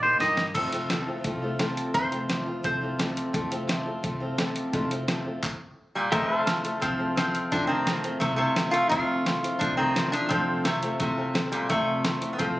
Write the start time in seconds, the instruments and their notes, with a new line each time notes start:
Already playing: upright bass A#2, pedal steel guitar G4 A#4, resonator guitar played with a steel bar A#4 G5
0.03 steel-string acoustic guitar A#3 D#4 G4, clean electric guitar C5
0.20 upright bass G2, steel-string acoustic guitar D#3 A#3 D#4 G4, clean electric guitar D#5, snare, open hi-hat
0.37 snare
0.54 upright bass F1, steel-string acoustic guitar F2 C3 F3 A3 C4 F4, resonator guitar played with a steel bar A4, kick, closed hi-hat, crash
0.72 steel-string acoustic guitar F3 A3 C4 F4, closed hi-hat
0.90 steel-string acoustic guitar F2 C3 F3 A3 C4 F4, snare, closed hi-hat
1.07 steel-string acoustic guitar F3 A3 C4 F4
1.24 upright bass C2, steel-string acoustic guitar F3 A3 C4 F4, kick, closed hi-hat
1.42 steel-string acoustic guitar F3 A3 C4 F4
1.59 steel-string acoustic guitar F2 C3 F3 A3 C4 F4, snare, closed hi-hat
1.77 closed hi-hat
1.94 upright bass F1, steel-string acoustic guitar F2 C3 F3 A3 C4 F4, resonator guitar played with a steel bar C5, kick, closed hi-hat
2.11 steel-string acoustic guitar F3 A3 C4 F4, closed hi-hat
2.29 steel-string acoustic guitar F2 C3 F3 A3 C4 F4, snare, closed hi-hat
2.46 steel-string acoustic guitar F3 A3 C4 F4
2.63 upright bass C2, steel-string acoustic guitar F3 A3 C4 F4, resonator guitar played with a steel bar C5, kick, closed hi-hat
2.81 steel-string acoustic guitar F3 A3 C4 F4
2.98 steel-string acoustic guitar F2 C3 F3 A3 C4 F4, snare, closed hi-hat
3.17 closed hi-hat
3.33 upright bass F1, steel-string acoustic guitar F2 C3 F3 A3 C4 F4, kick, closed hi-hat
3.50 steel-string acoustic guitar F3 A3 C4 F4, closed hi-hat
3.67 steel-string acoustic guitar F2 C3 F3 A3 C4 F4, snare, closed hi-hat
3.85 steel-string acoustic guitar F3 A3 C4 F4
4.03 upright bass C2, steel-string acoustic guitar F3 A3 C4 F4, kick, closed hi-hat
4.20 steel-string acoustic guitar F3 A3 C4 F4
4.38 steel-string acoustic guitar F2 C3 F3 A3 C4 F4, snare, closed hi-hat
4.56 closed hi-hat
4.73 upright bass F1, steel-string acoustic guitar F2 C3 F3 A3 C4 F4, kick, closed hi-hat
4.91 steel-string acoustic guitar F3 A3 C4 F4, closed hi-hat
5.08 steel-string acoustic guitar F2 C3 F3 A3 C4 F4, snare, closed hi-hat
5.25 steel-string acoustic guitar F3 A3 C4 F4
5.43 kick, clap
5.95 resonator guitar played with a steel bar A#2 G3
6.11 upright bass F1, steel-string acoustic guitar F2 C3 F3 A3 C4 F4, resonator guitar played with a steel bar C3 A3, pedal steel guitar G4 A#4 D#5, kick, closed hi-hat
6.37 pedal steel guitar A4 C5 F5
6.46 steel-string acoustic guitar F3 A3 C4 F4, snare, closed hi-hat
6.63 steel-string acoustic guitar F3 A3 C4 F4, closed hi-hat
6.80 upright bass C2, steel-string acoustic guitar F3 A3 C4 F4, resonator guitar played with a steel bar F3 C4, kick, closed hi-hat
6.98 steel-string acoustic guitar F3 A3 C4 F4
7.16 steel-string acoustic guitar F3 A3 C4 F4, resonator guitar played with a steel bar F3 C4, snare, closed hi-hat
7.35 closed hi-hat
7.51 upright bass F1, steel-string acoustic guitar F2 C3 F3 A3 C4 F4, resonator guitar played with a steel bar F3 D4, kick, closed hi-hat
7.67 resonator guitar played with a steel bar D#3 C4
7.86 steel-string acoustic guitar F3 A3 C4 F4, snare, closed hi-hat
8.03 steel-string acoustic guitar F3 A3 C4 F4, closed hi-hat
8.20 upright bass C2, resonator guitar played with a steel bar C3 A3, steel-string acoustic guitar F3 A3 C4 F4, kick, closed hi-hat
8.36 resonator guitar played with a steel bar C3 A3, steel-string acoustic guitar A3 C4 F4
8.41 steel-string acoustic guitar F3
8.56 steel-string acoustic guitar F3 A3 C4 F4, snare, closed hi-hat
8.71 resonator guitar played with a steel bar A3 F4, closed hi-hat
8.89 upright bass F1, steel-string acoustic guitar F2 C3 F3 A3 C4 F4, resonator guitar played with a steel bar A3 F4, kick, closed hi-hat
9.25 steel-string acoustic guitar F3 A3 C4 F4, snare, closed hi-hat
9.43 steel-string acoustic guitar F3 A3 C4 F4, closed hi-hat
9.59 upright bass C2, steel-string acoustic guitar F3 A3 C4 F4, resonator guitar played with a steel bar F3 D4, kick, closed hi-hat
9.77 resonator guitar played with a steel bar D#3 C4, steel-string acoustic guitar F3 A3 C4 F4
9.94 steel-string acoustic guitar F3 A3 C4 F4, snare, closed hi-hat
10.12 resonator guitar played with a steel bar F3 D4, closed hi-hat
10.29 upright bass F1, steel-string acoustic guitar F2 C3 F3 A3 C4 F4, resonator guitar played with a steel bar F3 C4, kick, closed hi-hat
10.64 resonator guitar played with a steel bar C3 A3, steel-string acoustic guitar F3 A3 C4 F4, snare, closed hi-hat
10.82 steel-string acoustic guitar F3 A3 C4 F4, closed hi-hat
10.99 upright bass C2, resonator guitar played with a steel bar C3 A3, steel-string acoustic guitar F3 A3 C4 F4, kick, closed hi-hat
11.17 steel-string acoustic guitar F3 A3 C4 F4
11.34 steel-string acoustic guitar F3 A3 C4 F4, snare, closed hi-hat
11.52 resonator guitar played with a steel bar A#2 G3, closed hi-hat
11.69 upright bass F1, steel-string acoustic guitar F2 C3 F3 A3 C4 F4, resonator guitar played with a steel bar C3 A3, kick, closed hi-hat
12.04 steel-string acoustic guitar F3 A3 C4 F4, snare, closed hi-hat
12.21 steel-string acoustic guitar F3 A3 C4 F4, closed hi-hat
12.33 resonator guitar played with a steel bar B3
12.38 upright bass C2, steel-string acoustic guitar F3 A3 C4 F4, resonator guitar played with a steel bar F3 C4, kick, closed hi-hat
12.56 steel-string acoustic guitar F4